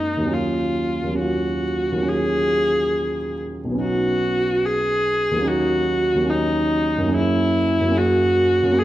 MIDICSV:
0, 0, Header, 1, 3, 480
1, 0, Start_track
1, 0, Tempo, 870827
1, 182, Time_signature, 4, 2, 24, 8
1, 2104, Tempo, 832178
1, 5002, End_track
2, 0, Start_track
2, 0, Title_t, "Viola"
2, 0, Program_c, 0, 41
2, 0, Note_on_c, 0, 63, 55
2, 181, Note_on_c, 0, 65, 50
2, 189, Note_off_c, 0, 63, 0
2, 654, Note_off_c, 0, 65, 0
2, 657, Note_on_c, 0, 66, 55
2, 1152, Note_on_c, 0, 68, 67
2, 1160, Note_off_c, 0, 66, 0
2, 1873, Note_off_c, 0, 68, 0
2, 2100, Note_on_c, 0, 66, 67
2, 2587, Note_on_c, 0, 68, 69
2, 2595, Note_off_c, 0, 66, 0
2, 3060, Note_on_c, 0, 66, 72
2, 3069, Note_off_c, 0, 68, 0
2, 3535, Note_on_c, 0, 63, 64
2, 3543, Note_off_c, 0, 66, 0
2, 4023, Note_off_c, 0, 63, 0
2, 4036, Note_on_c, 0, 64, 68
2, 4503, Note_on_c, 0, 66, 70
2, 4512, Note_off_c, 0, 64, 0
2, 4973, Note_on_c, 0, 68, 75
2, 4982, Note_off_c, 0, 66, 0
2, 5002, Note_off_c, 0, 68, 0
2, 5002, End_track
3, 0, Start_track
3, 0, Title_t, "Grand piano"
3, 0, Program_c, 1, 0
3, 0, Control_c, 1, 64, 127
3, 0, Note_on_c, 1, 42, 33
3, 0, Note_on_c, 1, 56, 30
3, 0, Note_on_c, 1, 58, 30
3, 0, Note_on_c, 1, 61, 28
3, 0, Note_on_c, 1, 66, 30
3, 93, Note_on_c, 1, 39, 35
3, 111, Note_on_c, 1, 54, 29
3, 115, Note_off_c, 1, 42, 0
3, 123, Note_off_c, 1, 56, 0
3, 125, Note_off_c, 1, 58, 0
3, 133, Note_on_c, 1, 58, 29
3, 142, Note_off_c, 1, 61, 0
3, 150, Note_on_c, 1, 61, 29
3, 151, Note_off_c, 1, 66, 0
3, 172, Note_on_c, 1, 65, 29
3, 192, Control_c, 1, 64, 0
3, 278, Control_c, 1, 64, 127
3, 561, Note_off_c, 1, 39, 0
3, 569, Note_on_c, 1, 39, 37
3, 580, Note_off_c, 1, 54, 0
3, 588, Note_on_c, 1, 54, 30
3, 603, Note_off_c, 1, 58, 0
3, 611, Note_on_c, 1, 58, 29
3, 623, Note_off_c, 1, 61, 0
3, 631, Note_on_c, 1, 61, 29
3, 641, Note_off_c, 1, 65, 0
3, 649, Note_on_c, 1, 65, 28
3, 1048, Note_off_c, 1, 39, 0
3, 1056, Note_on_c, 1, 39, 40
3, 1068, Note_off_c, 1, 54, 0
3, 1076, Note_on_c, 1, 54, 33
3, 1088, Note_off_c, 1, 58, 0
3, 1096, Note_on_c, 1, 58, 33
3, 1109, Note_off_c, 1, 61, 0
3, 1117, Note_on_c, 1, 61, 33
3, 1126, Note_off_c, 1, 65, 0
3, 1134, Note_on_c, 1, 65, 31
3, 2008, Note_on_c, 1, 35, 37
3, 2020, Note_off_c, 1, 54, 0
3, 2028, Note_on_c, 1, 54, 33
3, 2035, Note_off_c, 1, 39, 0
3, 2048, Note_on_c, 1, 59, 32
3, 2055, Note_off_c, 1, 58, 0
3, 2058, Note_off_c, 1, 61, 0
3, 2066, Note_on_c, 1, 61, 31
3, 2074, Note_off_c, 1, 65, 0
3, 2088, Note_on_c, 1, 63, 33
3, 2113, Control_c, 1, 64, 0
3, 2220, Control_c, 1, 64, 127
3, 2965, Note_on_c, 1, 39, 44
3, 2979, Note_off_c, 1, 54, 0
3, 2988, Note_on_c, 1, 54, 38
3, 2992, Note_off_c, 1, 35, 0
3, 3009, Note_on_c, 1, 58, 36
3, 3013, Note_off_c, 1, 59, 0
3, 3022, Note_off_c, 1, 61, 0
3, 3030, Note_on_c, 1, 61, 36
3, 3034, Note_off_c, 1, 63, 0
3, 3049, Note_on_c, 1, 63, 36
3, 3075, Control_c, 1, 64, 0
3, 3150, Control_c, 1, 64, 127
3, 3440, Note_off_c, 1, 39, 0
3, 3448, Note_on_c, 1, 39, 41
3, 3457, Note_off_c, 1, 54, 0
3, 3466, Note_on_c, 1, 54, 35
3, 3479, Note_off_c, 1, 58, 0
3, 3487, Note_on_c, 1, 58, 35
3, 3503, Note_off_c, 1, 61, 0
3, 3511, Note_on_c, 1, 61, 36
3, 3520, Note_off_c, 1, 63, 0
3, 3529, Note_on_c, 1, 63, 34
3, 3928, Note_on_c, 1, 42, 41
3, 3939, Note_off_c, 1, 54, 0
3, 3948, Note_on_c, 1, 54, 36
3, 3961, Note_off_c, 1, 58, 0
3, 3964, Note_off_c, 1, 39, 0
3, 3969, Note_on_c, 1, 58, 35
3, 3981, Note_off_c, 1, 61, 0
3, 3989, Note_on_c, 1, 61, 38
3, 4005, Note_off_c, 1, 63, 0
3, 4008, Note_on_c, 1, 68, 34
3, 4040, Control_c, 1, 64, 0
3, 4140, Control_c, 1, 64, 127
3, 4394, Note_off_c, 1, 42, 0
3, 4403, Note_on_c, 1, 42, 42
3, 4414, Note_off_c, 1, 54, 0
3, 4422, Note_on_c, 1, 54, 36
3, 4434, Note_off_c, 1, 58, 0
3, 4443, Note_on_c, 1, 58, 38
3, 4457, Note_off_c, 1, 61, 0
3, 4466, Note_on_c, 1, 61, 36
3, 4474, Note_off_c, 1, 68, 0
3, 4483, Note_on_c, 1, 68, 38
3, 4871, Note_off_c, 1, 42, 0
3, 4880, Note_on_c, 1, 42, 48
3, 4894, Note_off_c, 1, 54, 0
3, 4902, Note_on_c, 1, 54, 39
3, 4914, Note_off_c, 1, 58, 0
3, 4923, Note_on_c, 1, 58, 36
3, 4934, Note_off_c, 1, 61, 0
3, 4943, Note_on_c, 1, 61, 39
3, 4955, Note_off_c, 1, 68, 0
3, 4964, Note_on_c, 1, 68, 36
3, 5002, Note_off_c, 1, 42, 0
3, 5002, Note_off_c, 1, 54, 0
3, 5002, Note_off_c, 1, 58, 0
3, 5002, Note_off_c, 1, 61, 0
3, 5002, Note_off_c, 1, 68, 0
3, 5002, End_track
0, 0, End_of_file